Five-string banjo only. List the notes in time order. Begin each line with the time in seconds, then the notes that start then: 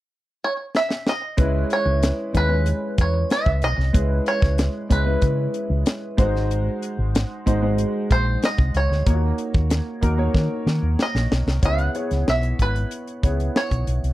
0.44 C#5
0.77 E5
1.09 D#5
1.73 C#5
2.37 B4
3.01 C#5
3.32 E5
3.64 D#5
4.28 C#5
4.92 B4
8.12 C5
8.45 D#5
8.77 C#5
11.02 D#5
11.65 F#5
12.30 E5
12.62 B4
13.57 C#5